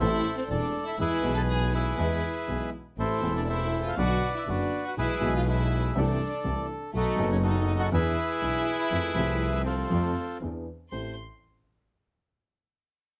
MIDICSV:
0, 0, Header, 1, 5, 480
1, 0, Start_track
1, 0, Key_signature, 0, "minor"
1, 0, Tempo, 495868
1, 954, Time_signature, 4, 2, 24, 8
1, 12770, End_track
2, 0, Start_track
2, 0, Title_t, "Bandoneon"
2, 0, Program_c, 0, 23
2, 1, Note_on_c, 0, 76, 103
2, 5, Note_on_c, 0, 72, 74
2, 9, Note_on_c, 0, 69, 74
2, 333, Note_off_c, 0, 76, 0
2, 351, Note_off_c, 0, 72, 0
2, 366, Note_on_c, 0, 72, 88
2, 473, Note_off_c, 0, 72, 0
2, 480, Note_off_c, 0, 69, 0
2, 489, Note_on_c, 0, 74, 95
2, 494, Note_on_c, 0, 69, 74
2, 816, Note_off_c, 0, 74, 0
2, 849, Note_on_c, 0, 76, 97
2, 930, Note_off_c, 0, 69, 0
2, 954, Note_off_c, 0, 76, 0
2, 977, Note_on_c, 0, 76, 115
2, 978, Note_on_c, 0, 68, 89
2, 979, Note_on_c, 0, 71, 88
2, 1301, Note_off_c, 0, 76, 0
2, 1328, Note_on_c, 0, 81, 101
2, 1379, Note_off_c, 0, 81, 0
2, 1454, Note_on_c, 0, 80, 104
2, 1669, Note_off_c, 0, 80, 0
2, 1676, Note_off_c, 0, 71, 0
2, 1679, Note_off_c, 0, 68, 0
2, 1691, Note_on_c, 0, 71, 68
2, 1693, Note_on_c, 0, 68, 68
2, 1697, Note_on_c, 0, 76, 97
2, 2612, Note_off_c, 0, 71, 0
2, 2614, Note_off_c, 0, 68, 0
2, 2615, Note_off_c, 0, 76, 0
2, 2900, Note_on_c, 0, 69, 75
2, 2900, Note_on_c, 0, 72, 102
2, 2901, Note_on_c, 0, 64, 70
2, 3230, Note_off_c, 0, 72, 0
2, 3265, Note_on_c, 0, 74, 87
2, 3364, Note_off_c, 0, 69, 0
2, 3369, Note_off_c, 0, 74, 0
2, 3378, Note_on_c, 0, 69, 66
2, 3387, Note_on_c, 0, 72, 69
2, 3388, Note_on_c, 0, 76, 86
2, 3751, Note_off_c, 0, 76, 0
2, 3759, Note_on_c, 0, 77, 95
2, 3820, Note_off_c, 0, 64, 0
2, 3822, Note_off_c, 0, 69, 0
2, 3827, Note_off_c, 0, 72, 0
2, 3854, Note_on_c, 0, 74, 78
2, 3855, Note_on_c, 0, 71, 79
2, 3858, Note_off_c, 0, 77, 0
2, 3865, Note_on_c, 0, 78, 110
2, 4195, Note_off_c, 0, 78, 0
2, 4245, Note_on_c, 0, 76, 89
2, 4335, Note_off_c, 0, 71, 0
2, 4343, Note_off_c, 0, 76, 0
2, 4350, Note_on_c, 0, 66, 72
2, 4350, Note_on_c, 0, 71, 66
2, 4353, Note_off_c, 0, 74, 0
2, 4368, Note_on_c, 0, 74, 94
2, 4688, Note_off_c, 0, 74, 0
2, 4724, Note_on_c, 0, 78, 102
2, 4771, Note_off_c, 0, 78, 0
2, 4790, Note_off_c, 0, 66, 0
2, 4790, Note_off_c, 0, 71, 0
2, 4824, Note_on_c, 0, 68, 83
2, 4828, Note_on_c, 0, 71, 77
2, 4840, Note_on_c, 0, 76, 116
2, 5162, Note_off_c, 0, 76, 0
2, 5202, Note_on_c, 0, 77, 99
2, 5299, Note_off_c, 0, 68, 0
2, 5299, Note_off_c, 0, 71, 0
2, 5300, Note_off_c, 0, 77, 0
2, 5313, Note_on_c, 0, 68, 65
2, 5314, Note_on_c, 0, 71, 63
2, 5318, Note_on_c, 0, 76, 88
2, 5747, Note_off_c, 0, 68, 0
2, 5748, Note_off_c, 0, 71, 0
2, 5780, Note_on_c, 0, 69, 73
2, 5784, Note_on_c, 0, 74, 90
2, 5796, Note_off_c, 0, 76, 0
2, 6451, Note_off_c, 0, 74, 0
2, 6688, Note_off_c, 0, 69, 0
2, 6742, Note_on_c, 0, 66, 78
2, 6743, Note_on_c, 0, 63, 80
2, 6750, Note_on_c, 0, 69, 110
2, 7069, Note_off_c, 0, 69, 0
2, 7084, Note_on_c, 0, 73, 98
2, 7136, Note_off_c, 0, 73, 0
2, 7185, Note_off_c, 0, 66, 0
2, 7199, Note_on_c, 0, 66, 73
2, 7204, Note_on_c, 0, 69, 70
2, 7204, Note_on_c, 0, 75, 92
2, 7549, Note_on_c, 0, 78, 110
2, 7567, Note_off_c, 0, 75, 0
2, 7603, Note_off_c, 0, 78, 0
2, 7639, Note_off_c, 0, 66, 0
2, 7642, Note_off_c, 0, 69, 0
2, 7644, Note_off_c, 0, 63, 0
2, 7684, Note_on_c, 0, 71, 87
2, 7686, Note_on_c, 0, 76, 120
2, 7688, Note_on_c, 0, 68, 85
2, 9312, Note_off_c, 0, 71, 0
2, 9314, Note_off_c, 0, 68, 0
2, 9314, Note_off_c, 0, 76, 0
2, 9352, Note_on_c, 0, 72, 85
2, 9356, Note_on_c, 0, 69, 58
2, 9359, Note_on_c, 0, 65, 59
2, 10045, Note_off_c, 0, 72, 0
2, 10046, Note_off_c, 0, 69, 0
2, 10048, Note_off_c, 0, 65, 0
2, 10572, Note_on_c, 0, 72, 96
2, 10797, Note_off_c, 0, 72, 0
2, 12770, End_track
3, 0, Start_track
3, 0, Title_t, "Violin section"
3, 0, Program_c, 1, 48
3, 20, Note_on_c, 1, 64, 95
3, 343, Note_off_c, 1, 64, 0
3, 367, Note_on_c, 1, 60, 79
3, 473, Note_off_c, 1, 60, 0
3, 479, Note_on_c, 1, 62, 83
3, 811, Note_off_c, 1, 62, 0
3, 828, Note_on_c, 1, 64, 80
3, 938, Note_off_c, 1, 64, 0
3, 949, Note_on_c, 1, 64, 100
3, 1286, Note_off_c, 1, 64, 0
3, 1307, Note_on_c, 1, 69, 87
3, 1363, Note_off_c, 1, 69, 0
3, 1436, Note_on_c, 1, 68, 89
3, 1659, Note_off_c, 1, 68, 0
3, 1678, Note_on_c, 1, 64, 78
3, 2606, Note_off_c, 1, 64, 0
3, 2893, Note_on_c, 1, 60, 84
3, 3226, Note_off_c, 1, 60, 0
3, 3251, Note_on_c, 1, 62, 79
3, 3362, Note_off_c, 1, 62, 0
3, 3370, Note_on_c, 1, 64, 87
3, 3706, Note_off_c, 1, 64, 0
3, 3723, Note_on_c, 1, 65, 64
3, 3838, Note_off_c, 1, 65, 0
3, 3847, Note_on_c, 1, 66, 103
3, 4185, Note_off_c, 1, 66, 0
3, 4207, Note_on_c, 1, 64, 80
3, 4318, Note_on_c, 1, 62, 78
3, 4322, Note_off_c, 1, 64, 0
3, 4661, Note_off_c, 1, 62, 0
3, 4693, Note_on_c, 1, 66, 81
3, 4748, Note_off_c, 1, 66, 0
3, 4818, Note_on_c, 1, 64, 98
3, 5151, Note_off_c, 1, 64, 0
3, 5188, Note_on_c, 1, 65, 83
3, 5293, Note_off_c, 1, 65, 0
3, 5307, Note_on_c, 1, 64, 83
3, 5744, Note_off_c, 1, 64, 0
3, 5783, Note_on_c, 1, 62, 77
3, 6451, Note_off_c, 1, 62, 0
3, 6726, Note_on_c, 1, 57, 88
3, 7056, Note_off_c, 1, 57, 0
3, 7081, Note_on_c, 1, 61, 84
3, 7134, Note_off_c, 1, 61, 0
3, 7211, Note_on_c, 1, 63, 92
3, 7535, Note_off_c, 1, 63, 0
3, 7562, Note_on_c, 1, 66, 85
3, 7614, Note_off_c, 1, 66, 0
3, 7670, Note_on_c, 1, 64, 110
3, 9306, Note_off_c, 1, 64, 0
3, 9340, Note_on_c, 1, 60, 71
3, 10039, Note_off_c, 1, 60, 0
3, 10566, Note_on_c, 1, 84, 73
3, 10793, Note_off_c, 1, 84, 0
3, 12770, End_track
4, 0, Start_track
4, 0, Title_t, "Grand piano"
4, 0, Program_c, 2, 0
4, 4, Note_on_c, 2, 52, 83
4, 7, Note_on_c, 2, 57, 71
4, 8, Note_on_c, 2, 33, 99
4, 10, Note_on_c, 2, 45, 103
4, 11, Note_on_c, 2, 69, 84
4, 14, Note_on_c, 2, 60, 78
4, 202, Note_off_c, 2, 52, 0
4, 204, Note_off_c, 2, 57, 0
4, 205, Note_off_c, 2, 33, 0
4, 206, Note_off_c, 2, 45, 0
4, 206, Note_off_c, 2, 69, 0
4, 207, Note_off_c, 2, 60, 0
4, 482, Note_on_c, 2, 52, 54
4, 485, Note_on_c, 2, 57, 50
4, 485, Note_on_c, 2, 69, 64
4, 486, Note_on_c, 2, 28, 65
4, 486, Note_on_c, 2, 40, 64
4, 489, Note_on_c, 2, 60, 52
4, 680, Note_off_c, 2, 52, 0
4, 681, Note_off_c, 2, 28, 0
4, 681, Note_off_c, 2, 57, 0
4, 681, Note_off_c, 2, 69, 0
4, 682, Note_off_c, 2, 40, 0
4, 683, Note_off_c, 2, 60, 0
4, 958, Note_on_c, 2, 56, 48
4, 961, Note_on_c, 2, 59, 46
4, 962, Note_on_c, 2, 40, 59
4, 962, Note_on_c, 2, 52, 64
4, 965, Note_on_c, 2, 68, 58
4, 1158, Note_off_c, 2, 56, 0
4, 1159, Note_off_c, 2, 52, 0
4, 1159, Note_off_c, 2, 59, 0
4, 1160, Note_off_c, 2, 40, 0
4, 1161, Note_off_c, 2, 68, 0
4, 1174, Note_on_c, 2, 52, 77
4, 1183, Note_on_c, 2, 56, 68
4, 1190, Note_on_c, 2, 47, 97
4, 1191, Note_on_c, 2, 35, 92
4, 1195, Note_on_c, 2, 59, 75
4, 1213, Note_on_c, 2, 68, 84
4, 1870, Note_off_c, 2, 52, 0
4, 1874, Note_off_c, 2, 56, 0
4, 1878, Note_off_c, 2, 35, 0
4, 1878, Note_off_c, 2, 47, 0
4, 1880, Note_off_c, 2, 59, 0
4, 1890, Note_off_c, 2, 68, 0
4, 1910, Note_on_c, 2, 52, 81
4, 1913, Note_on_c, 2, 56, 70
4, 1914, Note_on_c, 2, 68, 81
4, 1916, Note_on_c, 2, 40, 89
4, 1916, Note_on_c, 2, 59, 68
4, 2118, Note_off_c, 2, 52, 0
4, 2118, Note_off_c, 2, 56, 0
4, 2118, Note_off_c, 2, 68, 0
4, 2120, Note_off_c, 2, 40, 0
4, 2120, Note_off_c, 2, 59, 0
4, 2401, Note_on_c, 2, 52, 45
4, 2403, Note_on_c, 2, 56, 43
4, 2404, Note_on_c, 2, 47, 53
4, 2404, Note_on_c, 2, 68, 53
4, 2405, Note_on_c, 2, 35, 57
4, 2406, Note_on_c, 2, 59, 45
4, 2605, Note_off_c, 2, 52, 0
4, 2606, Note_off_c, 2, 47, 0
4, 2606, Note_off_c, 2, 56, 0
4, 2606, Note_off_c, 2, 68, 0
4, 2607, Note_off_c, 2, 35, 0
4, 2607, Note_off_c, 2, 59, 0
4, 2885, Note_on_c, 2, 57, 43
4, 2886, Note_on_c, 2, 45, 52
4, 2886, Note_on_c, 2, 60, 43
4, 2887, Note_on_c, 2, 52, 43
4, 2889, Note_on_c, 2, 69, 51
4, 2890, Note_on_c, 2, 33, 53
4, 3085, Note_off_c, 2, 52, 0
4, 3088, Note_off_c, 2, 45, 0
4, 3088, Note_off_c, 2, 57, 0
4, 3088, Note_off_c, 2, 60, 0
4, 3090, Note_off_c, 2, 33, 0
4, 3090, Note_off_c, 2, 69, 0
4, 3099, Note_on_c, 2, 52, 73
4, 3111, Note_on_c, 2, 57, 70
4, 3117, Note_on_c, 2, 28, 80
4, 3119, Note_on_c, 2, 40, 87
4, 3126, Note_on_c, 2, 60, 67
4, 3141, Note_on_c, 2, 69, 75
4, 3801, Note_off_c, 2, 52, 0
4, 3807, Note_off_c, 2, 57, 0
4, 3810, Note_off_c, 2, 28, 0
4, 3811, Note_off_c, 2, 40, 0
4, 3814, Note_off_c, 2, 60, 0
4, 3821, Note_off_c, 2, 69, 0
4, 3843, Note_on_c, 2, 50, 68
4, 3843, Note_on_c, 2, 54, 68
4, 3847, Note_on_c, 2, 47, 86
4, 3848, Note_on_c, 2, 59, 67
4, 3849, Note_on_c, 2, 35, 85
4, 3849, Note_on_c, 2, 66, 76
4, 4050, Note_off_c, 2, 50, 0
4, 4050, Note_off_c, 2, 54, 0
4, 4051, Note_off_c, 2, 47, 0
4, 4052, Note_off_c, 2, 35, 0
4, 4052, Note_off_c, 2, 59, 0
4, 4052, Note_off_c, 2, 66, 0
4, 4324, Note_on_c, 2, 50, 52
4, 4328, Note_on_c, 2, 59, 46
4, 4330, Note_on_c, 2, 30, 61
4, 4331, Note_on_c, 2, 42, 61
4, 4331, Note_on_c, 2, 54, 46
4, 4335, Note_on_c, 2, 66, 58
4, 4531, Note_off_c, 2, 50, 0
4, 4533, Note_off_c, 2, 59, 0
4, 4534, Note_off_c, 2, 30, 0
4, 4535, Note_off_c, 2, 42, 0
4, 4535, Note_off_c, 2, 54, 0
4, 4537, Note_off_c, 2, 66, 0
4, 4806, Note_on_c, 2, 52, 49
4, 4806, Note_on_c, 2, 56, 43
4, 4807, Note_on_c, 2, 47, 58
4, 4809, Note_on_c, 2, 59, 47
4, 4811, Note_on_c, 2, 35, 58
4, 4815, Note_on_c, 2, 68, 51
4, 5007, Note_off_c, 2, 52, 0
4, 5012, Note_off_c, 2, 47, 0
4, 5012, Note_off_c, 2, 56, 0
4, 5013, Note_off_c, 2, 59, 0
4, 5014, Note_off_c, 2, 35, 0
4, 5016, Note_off_c, 2, 68, 0
4, 5022, Note_on_c, 2, 52, 76
4, 5039, Note_on_c, 2, 56, 77
4, 5040, Note_on_c, 2, 47, 94
4, 5044, Note_on_c, 2, 35, 99
4, 5049, Note_on_c, 2, 59, 69
4, 5065, Note_on_c, 2, 68, 90
4, 5719, Note_off_c, 2, 52, 0
4, 5727, Note_off_c, 2, 56, 0
4, 5728, Note_off_c, 2, 47, 0
4, 5730, Note_off_c, 2, 35, 0
4, 5732, Note_off_c, 2, 59, 0
4, 5740, Note_off_c, 2, 68, 0
4, 5765, Note_on_c, 2, 36, 97
4, 5765, Note_on_c, 2, 48, 89
4, 5766, Note_on_c, 2, 57, 72
4, 5767, Note_on_c, 2, 52, 82
4, 5769, Note_on_c, 2, 60, 73
4, 5770, Note_on_c, 2, 69, 90
4, 5967, Note_off_c, 2, 36, 0
4, 5967, Note_off_c, 2, 48, 0
4, 5967, Note_off_c, 2, 57, 0
4, 5968, Note_off_c, 2, 52, 0
4, 5969, Note_off_c, 2, 60, 0
4, 5969, Note_off_c, 2, 69, 0
4, 6235, Note_on_c, 2, 52, 51
4, 6237, Note_on_c, 2, 36, 62
4, 6239, Note_on_c, 2, 57, 50
4, 6240, Note_on_c, 2, 48, 62
4, 6241, Note_on_c, 2, 60, 51
4, 6243, Note_on_c, 2, 69, 59
4, 6440, Note_off_c, 2, 52, 0
4, 6441, Note_off_c, 2, 36, 0
4, 6442, Note_off_c, 2, 57, 0
4, 6443, Note_off_c, 2, 48, 0
4, 6443, Note_off_c, 2, 60, 0
4, 6444, Note_off_c, 2, 69, 0
4, 6712, Note_on_c, 2, 47, 59
4, 6713, Note_on_c, 2, 54, 50
4, 6713, Note_on_c, 2, 59, 48
4, 6714, Note_on_c, 2, 35, 59
4, 6716, Note_on_c, 2, 69, 59
4, 6717, Note_on_c, 2, 63, 46
4, 6917, Note_off_c, 2, 47, 0
4, 6918, Note_off_c, 2, 35, 0
4, 6918, Note_off_c, 2, 54, 0
4, 6918, Note_off_c, 2, 59, 0
4, 6919, Note_off_c, 2, 69, 0
4, 6920, Note_off_c, 2, 63, 0
4, 6932, Note_on_c, 2, 54, 88
4, 6944, Note_on_c, 2, 59, 77
4, 6948, Note_on_c, 2, 42, 97
4, 6953, Note_on_c, 2, 30, 102
4, 6957, Note_on_c, 2, 63, 82
4, 6971, Note_on_c, 2, 69, 94
4, 7622, Note_off_c, 2, 54, 0
4, 7628, Note_off_c, 2, 59, 0
4, 7630, Note_off_c, 2, 42, 0
4, 7632, Note_off_c, 2, 30, 0
4, 7634, Note_off_c, 2, 63, 0
4, 7641, Note_off_c, 2, 69, 0
4, 7666, Note_on_c, 2, 40, 90
4, 7666, Note_on_c, 2, 52, 84
4, 7666, Note_on_c, 2, 59, 76
4, 7668, Note_on_c, 2, 62, 66
4, 7671, Note_on_c, 2, 68, 81
4, 7868, Note_off_c, 2, 59, 0
4, 7869, Note_off_c, 2, 40, 0
4, 7869, Note_off_c, 2, 62, 0
4, 7870, Note_off_c, 2, 52, 0
4, 7871, Note_off_c, 2, 68, 0
4, 8143, Note_on_c, 2, 52, 48
4, 8146, Note_on_c, 2, 47, 60
4, 8146, Note_on_c, 2, 62, 46
4, 8147, Note_on_c, 2, 59, 46
4, 8149, Note_on_c, 2, 35, 59
4, 8151, Note_on_c, 2, 68, 59
4, 8346, Note_off_c, 2, 52, 0
4, 8348, Note_off_c, 2, 47, 0
4, 8348, Note_off_c, 2, 59, 0
4, 8348, Note_off_c, 2, 62, 0
4, 8349, Note_off_c, 2, 35, 0
4, 8350, Note_off_c, 2, 68, 0
4, 8625, Note_on_c, 2, 41, 56
4, 8625, Note_on_c, 2, 53, 57
4, 8628, Note_on_c, 2, 57, 45
4, 8629, Note_on_c, 2, 60, 43
4, 8630, Note_on_c, 2, 69, 51
4, 8827, Note_off_c, 2, 41, 0
4, 8829, Note_off_c, 2, 53, 0
4, 8829, Note_off_c, 2, 57, 0
4, 8829, Note_off_c, 2, 60, 0
4, 8830, Note_off_c, 2, 69, 0
4, 8851, Note_on_c, 2, 53, 79
4, 8862, Note_on_c, 2, 57, 70
4, 8865, Note_on_c, 2, 48, 87
4, 8871, Note_on_c, 2, 36, 89
4, 8876, Note_on_c, 2, 60, 69
4, 9544, Note_off_c, 2, 53, 0
4, 9549, Note_off_c, 2, 57, 0
4, 9551, Note_off_c, 2, 48, 0
4, 9553, Note_off_c, 2, 36, 0
4, 9556, Note_off_c, 2, 60, 0
4, 9582, Note_on_c, 2, 53, 78
4, 9584, Note_on_c, 2, 60, 71
4, 9585, Note_on_c, 2, 41, 78
4, 9585, Note_on_c, 2, 57, 64
4, 9590, Note_on_c, 2, 69, 76
4, 9792, Note_off_c, 2, 41, 0
4, 9792, Note_off_c, 2, 57, 0
4, 9792, Note_off_c, 2, 60, 0
4, 9794, Note_off_c, 2, 53, 0
4, 9795, Note_off_c, 2, 69, 0
4, 10082, Note_on_c, 2, 40, 55
4, 10083, Note_on_c, 2, 52, 53
4, 10085, Note_on_c, 2, 59, 42
4, 10085, Note_on_c, 2, 62, 44
4, 10089, Note_on_c, 2, 68, 47
4, 10289, Note_off_c, 2, 40, 0
4, 10290, Note_off_c, 2, 59, 0
4, 10290, Note_off_c, 2, 62, 0
4, 10291, Note_off_c, 2, 52, 0
4, 10292, Note_off_c, 2, 68, 0
4, 10571, Note_on_c, 2, 33, 52
4, 10573, Note_on_c, 2, 69, 56
4, 10574, Note_on_c, 2, 64, 47
4, 10575, Note_on_c, 2, 60, 48
4, 10773, Note_off_c, 2, 33, 0
4, 10774, Note_off_c, 2, 69, 0
4, 10775, Note_off_c, 2, 64, 0
4, 10776, Note_off_c, 2, 60, 0
4, 12770, End_track
5, 0, Start_track
5, 0, Title_t, "Double bass"
5, 0, Program_c, 3, 43
5, 3, Note_on_c, 3, 33, 105
5, 202, Note_off_c, 3, 33, 0
5, 480, Note_on_c, 3, 28, 74
5, 678, Note_off_c, 3, 28, 0
5, 953, Note_on_c, 3, 40, 72
5, 1155, Note_off_c, 3, 40, 0
5, 1194, Note_on_c, 3, 35, 104
5, 1880, Note_off_c, 3, 35, 0
5, 1912, Note_on_c, 3, 40, 87
5, 2117, Note_off_c, 3, 40, 0
5, 2401, Note_on_c, 3, 35, 60
5, 2605, Note_off_c, 3, 35, 0
5, 2880, Note_on_c, 3, 33, 61
5, 3085, Note_off_c, 3, 33, 0
5, 3121, Note_on_c, 3, 28, 101
5, 3812, Note_off_c, 3, 28, 0
5, 3837, Note_on_c, 3, 35, 94
5, 4046, Note_off_c, 3, 35, 0
5, 4329, Note_on_c, 3, 30, 68
5, 4534, Note_off_c, 3, 30, 0
5, 4814, Note_on_c, 3, 35, 67
5, 5016, Note_off_c, 3, 35, 0
5, 5055, Note_on_c, 3, 35, 108
5, 5735, Note_off_c, 3, 35, 0
5, 5769, Note_on_c, 3, 36, 96
5, 5969, Note_off_c, 3, 36, 0
5, 6243, Note_on_c, 3, 36, 71
5, 6444, Note_off_c, 3, 36, 0
5, 6722, Note_on_c, 3, 35, 72
5, 6922, Note_off_c, 3, 35, 0
5, 6955, Note_on_c, 3, 30, 113
5, 7633, Note_off_c, 3, 30, 0
5, 7662, Note_on_c, 3, 40, 103
5, 7867, Note_off_c, 3, 40, 0
5, 8147, Note_on_c, 3, 35, 64
5, 8348, Note_off_c, 3, 35, 0
5, 8623, Note_on_c, 3, 41, 70
5, 8826, Note_off_c, 3, 41, 0
5, 8860, Note_on_c, 3, 36, 98
5, 9548, Note_off_c, 3, 36, 0
5, 9587, Note_on_c, 3, 41, 99
5, 9793, Note_off_c, 3, 41, 0
5, 10074, Note_on_c, 3, 40, 59
5, 10284, Note_off_c, 3, 40, 0
5, 10574, Note_on_c, 3, 33, 55
5, 10775, Note_off_c, 3, 33, 0
5, 12770, End_track
0, 0, End_of_file